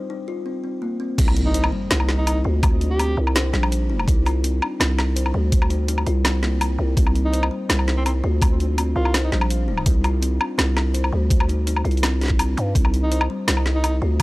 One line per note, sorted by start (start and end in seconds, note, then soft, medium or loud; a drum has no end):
0.10 0.26 D#4 medium
0.28 0.45 F4 medium
0.46 0.62 C4 medium
0.64 0.81 C4 medium
0.82 0.99 A#3 medium
1.00 1.17 C4 loud
1.18 1.71 C2 loud
1.18 1.35 C4 loud
1.18 kick loud
1.18 closed hi-hat medium
1.18 crash loud
1.18 impact medium
1.28 low woodblock medium
1.36 1.54 D#4 medium
1.36 closed hi-hat soft
1.46 1.67 D#4 medium
1.54 1.65 C5 loud
1.54 closed hi-hat medium
1.64 low woodblock medium
1.72 1.90 G3 loud
1.90 2.44 C2 loud
1.90 2.08 C5 medium
1.90 snare loud
1.90 closed hi-hat medium
2.00 low woodblock medium
2.08 2.25 D#4 loud
2.08 snare medium
2.18 2.40 D#4 medium
2.26 2.43 D#4 loud
2.26 closed hi-hat medium
2.26 low woodblock medium
2.44 3.16 D2 medium
2.44 2.62 F4 loud
2.63 2.80 C4 medium
2.63 kick loud
2.63 closed hi-hat medium
2.63 low woodblock medium
2.81 2.97 D4 medium
2.81 closed hi-hat soft
2.90 3.17 G4 loud
2.99 3.16 C4 loud
2.99 closed hi-hat medium
2.99 low woodblock medium
3.17 3.52 C2 loud
3.17 3.34 D#4 medium
3.27 low woodblock medium
3.35 3.46 C5 loud
3.35 snare loud
3.35 closed hi-hat medium
3.53 4.06 A#1 loud
3.53 3.71 G3 loud
3.53 snare medium
3.63 low woodblock medium
3.72 3.89 C5 medium
3.72 closed hi-hat medium
3.90 4.06 D#4 loud
3.99 low woodblock medium
4.08 4.60 C2 loud
4.08 4.24 D#4 loud
4.08 kick loud
4.08 closed hi-hat medium
4.26 4.43 F4 loud
4.26 closed hi-hat soft
4.26 low woodblock medium
4.44 4.61 C4 medium
4.44 closed hi-hat medium
4.62 4.78 D4 medium
4.62 low woodblock medium
4.80 5.33 C2 loud
4.80 4.97 C4 loud
4.80 snare loud
4.80 closed hi-hat medium
4.98 5.15 D#4 medium
4.98 snare medium
4.98 low woodblock medium
5.16 5.27 C5 loud
5.16 closed hi-hat medium
5.26 low woodblock medium
5.34 6.05 D2 medium
5.34 5.51 G3 loud
5.52 5.69 C5 medium
5.52 kick loud
5.52 closed hi-hat medium
5.62 low woodblock medium
5.70 5.86 D#4 loud
5.70 closed hi-hat soft
5.88 6.05 D#4 loud
5.88 closed hi-hat medium
5.98 low woodblock medium
6.06 6.77 C2 loud
6.06 6.24 F4 loud
6.06 closed hi-hat soft
6.24 6.42 C4 medium
6.24 snare loud
6.24 closed hi-hat medium
6.24 low woodblock medium
6.43 6.60 A#3 medium
6.43 snare medium
6.61 6.77 G3 medium
6.61 closed hi-hat medium
6.61 low woodblock medium
6.79 6.95 C2 medium
6.79 6.96 D#4 medium
6.97 7.50 C2 loud
6.97 7.14 C4 loud
6.97 kick loud
6.97 closed hi-hat medium
7.07 low woodblock soft
7.15 7.32 D#4 medium
7.15 closed hi-hat soft
7.25 7.46 D#4 medium
7.33 7.43 C5 loud
7.33 closed hi-hat medium
7.43 low woodblock medium
7.51 7.68 G3 loud
7.69 8.22 C2 loud
7.69 7.86 C5 medium
7.69 snare loud
7.69 closed hi-hat medium
7.79 low woodblock medium
7.87 8.04 D#4 loud
7.87 snare medium
7.97 8.02 C4 medium
8.05 8.11 C4 medium
8.05 8.22 D#4 loud
8.05 closed hi-hat medium
8.05 low woodblock medium
8.24 8.94 D2 medium
8.24 8.41 F4 loud
8.42 8.59 C4 medium
8.42 kick loud
8.42 closed hi-hat medium
8.42 low woodblock medium
8.60 8.76 D4 medium
8.60 closed hi-hat soft
8.78 8.95 C4 loud
8.78 closed hi-hat medium
8.78 low woodblock medium
8.96 9.30 C2 loud
8.96 9.13 D#4 medium
8.96 9.17 F4 medium
9.05 low woodblock medium
9.14 9.24 C5 loud
9.14 snare loud
9.14 closed hi-hat medium
9.24 9.29 D#4 medium
9.32 9.85 A#1 medium
9.32 9.49 G3 loud
9.32 9.38 D#4 medium
9.32 snare medium
9.41 low woodblock medium
9.50 9.67 C5 medium
9.50 closed hi-hat medium
9.68 9.84 D#4 loud
9.78 low woodblock medium
9.86 10.39 C2 loud
9.86 10.02 D#4 loud
9.86 kick loud
9.86 closed hi-hat medium
10.04 10.21 F4 loud
10.04 closed hi-hat soft
10.04 low woodblock medium
10.22 10.39 C4 medium
10.22 closed hi-hat medium
10.40 10.56 D4 medium
10.40 low woodblock medium
10.58 11.11 C2 loud
10.58 10.75 C4 loud
10.58 snare loud
10.58 closed hi-hat medium
10.76 10.93 D#4 medium
10.76 snare medium
10.76 low woodblock medium
10.94 11.05 C5 loud
10.94 closed hi-hat medium
11.04 low woodblock medium
11.12 11.83 D2 medium
11.12 11.30 G3 loud
11.30 11.48 C5 medium
11.30 kick loud
11.30 closed hi-hat medium
11.40 low woodblock medium
11.49 11.65 D#4 loud
11.49 closed hi-hat soft
11.67 11.83 D#4 loud
11.67 closed hi-hat medium
11.76 low woodblock medium
11.85 12.56 C2 loud
11.85 12.02 F4 loud
11.85 closed hi-hat soft
11.91 closed hi-hat soft
11.97 closed hi-hat soft
12.03 12.20 C4 medium
12.03 snare loud
12.03 closed hi-hat medium
12.03 low woodblock medium
12.21 12.37 D4 medium
12.21 snare soft
12.21 closed hi-hat soft
12.24 snare soft
12.26 snare soft
12.28 kick medium
12.28 snare soft
12.39 12.56 C4 medium
12.39 closed hi-hat medium
12.39 low woodblock medium
12.57 12.74 G2 medium
12.57 12.74 D#4 medium
12.57 closed hi-hat soft
12.75 13.28 C2 loud
12.75 12.92 C4 loud
12.75 kick loud
12.75 closed hi-hat medium
12.85 low woodblock medium
12.93 13.10 D#4 medium
12.93 closed hi-hat soft
13.03 13.24 D#4 medium
13.12 13.22 C5 loud
13.12 closed hi-hat medium
13.21 low woodblock medium
13.30 13.47 G3 loud
13.48 14.00 C2 loud
13.48 13.65 C5 medium
13.48 snare loud
13.48 closed hi-hat medium
13.57 low woodblock medium
13.66 13.82 D#4 loud
13.66 snare medium
13.75 13.97 D#4 medium
13.84 14.00 D#4 medium
13.84 closed hi-hat medium
13.84 low woodblock medium
14.02 14.22 D2 medium
14.02 14.19 F4 loud